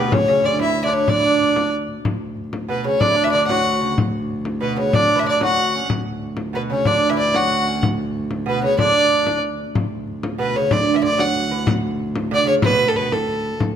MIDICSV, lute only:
0, 0, Header, 1, 2, 480
1, 0, Start_track
1, 0, Key_signature, 2, "major"
1, 0, Tempo, 320856
1, 177, Time_signature, 6, 3, 24, 8
1, 20582, End_track
2, 0, Start_track
2, 0, Title_t, "Lute"
2, 0, Program_c, 0, 24
2, 0, Note_on_c, 0, 47, 64
2, 169, Note_on_c, 0, 49, 71
2, 188, Note_off_c, 0, 47, 0
2, 400, Note_off_c, 0, 49, 0
2, 418, Note_on_c, 0, 49, 74
2, 649, Note_off_c, 0, 49, 0
2, 655, Note_on_c, 0, 50, 71
2, 875, Note_off_c, 0, 50, 0
2, 881, Note_on_c, 0, 52, 67
2, 1252, Note_off_c, 0, 52, 0
2, 1258, Note_on_c, 0, 50, 71
2, 1590, Note_off_c, 0, 50, 0
2, 1608, Note_on_c, 0, 50, 58
2, 2516, Note_off_c, 0, 50, 0
2, 4018, Note_on_c, 0, 47, 71
2, 4249, Note_on_c, 0, 49, 57
2, 4268, Note_off_c, 0, 47, 0
2, 4497, Note_off_c, 0, 49, 0
2, 4503, Note_on_c, 0, 50, 64
2, 4875, Note_off_c, 0, 50, 0
2, 4890, Note_on_c, 0, 52, 72
2, 4985, Note_off_c, 0, 52, 0
2, 4991, Note_on_c, 0, 50, 71
2, 5224, Note_on_c, 0, 54, 79
2, 5235, Note_off_c, 0, 50, 0
2, 5672, Note_off_c, 0, 54, 0
2, 5703, Note_on_c, 0, 49, 58
2, 5928, Note_off_c, 0, 49, 0
2, 6891, Note_on_c, 0, 47, 63
2, 7129, Note_on_c, 0, 49, 65
2, 7147, Note_off_c, 0, 47, 0
2, 7370, Note_off_c, 0, 49, 0
2, 7376, Note_on_c, 0, 50, 69
2, 7707, Note_off_c, 0, 50, 0
2, 7713, Note_on_c, 0, 52, 87
2, 7822, Note_off_c, 0, 52, 0
2, 7828, Note_on_c, 0, 50, 72
2, 8082, Note_on_c, 0, 54, 74
2, 8096, Note_off_c, 0, 50, 0
2, 8764, Note_off_c, 0, 54, 0
2, 9772, Note_on_c, 0, 47, 64
2, 10018, Note_on_c, 0, 49, 58
2, 10028, Note_off_c, 0, 47, 0
2, 10246, Note_off_c, 0, 49, 0
2, 10268, Note_on_c, 0, 50, 72
2, 10605, Note_off_c, 0, 50, 0
2, 10611, Note_on_c, 0, 52, 89
2, 10977, Note_on_c, 0, 54, 71
2, 10991, Note_off_c, 0, 52, 0
2, 11652, Note_off_c, 0, 54, 0
2, 12654, Note_on_c, 0, 47, 76
2, 12884, Note_off_c, 0, 47, 0
2, 12919, Note_on_c, 0, 49, 61
2, 13129, Note_off_c, 0, 49, 0
2, 13135, Note_on_c, 0, 50, 75
2, 14041, Note_off_c, 0, 50, 0
2, 15535, Note_on_c, 0, 47, 72
2, 15787, Note_off_c, 0, 47, 0
2, 15797, Note_on_c, 0, 49, 63
2, 16014, Note_off_c, 0, 49, 0
2, 16032, Note_on_c, 0, 50, 74
2, 16358, Note_off_c, 0, 50, 0
2, 16364, Note_on_c, 0, 52, 83
2, 16481, Note_off_c, 0, 52, 0
2, 16487, Note_on_c, 0, 50, 75
2, 16722, Note_on_c, 0, 54, 84
2, 16742, Note_off_c, 0, 50, 0
2, 17219, Note_on_c, 0, 52, 62
2, 17226, Note_off_c, 0, 54, 0
2, 17443, Note_off_c, 0, 52, 0
2, 18418, Note_on_c, 0, 50, 96
2, 18624, Note_off_c, 0, 50, 0
2, 18630, Note_on_c, 0, 49, 78
2, 18892, Note_off_c, 0, 49, 0
2, 18910, Note_on_c, 0, 47, 78
2, 19239, Note_off_c, 0, 47, 0
2, 19262, Note_on_c, 0, 45, 73
2, 19377, Note_off_c, 0, 45, 0
2, 19383, Note_on_c, 0, 47, 65
2, 19603, Note_off_c, 0, 47, 0
2, 19621, Note_on_c, 0, 45, 62
2, 20287, Note_off_c, 0, 45, 0
2, 20582, End_track
0, 0, End_of_file